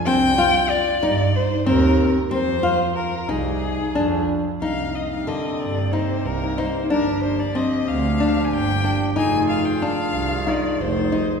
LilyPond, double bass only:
\new Staff \with { instrumentName = "Double bass" } { \clef bass \time 7/8 \key f \dorian \tempo 4 = 92 c,4. g,4 ees,4 | f,4. c,4 f,4 | c,4. g,4 c,4 | g,,4. d,4 g,,4 |
f,,4. c,4 f,,4 | }